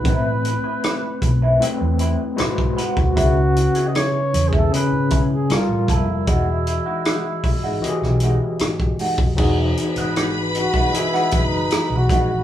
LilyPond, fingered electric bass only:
\new Staff \with { instrumentName = "Fingered electric bass" } { \clef bass \time 4/4 \key e \major \tempo 4 = 77 a,,8. r8. b,,8 r16 e,8 r16 gis,,8 r16 d,16 | cis,8. r8. e,8 r16 gis,,8 r16 g,,16 a,,16 f,,8 | e,,8. r8. gis,,8 r16 b,,8 r16 gis,,8 r16 f,,16 | e,,8 r16 gis,,4 r8. fis,,8 r16 b,,16 r8 | }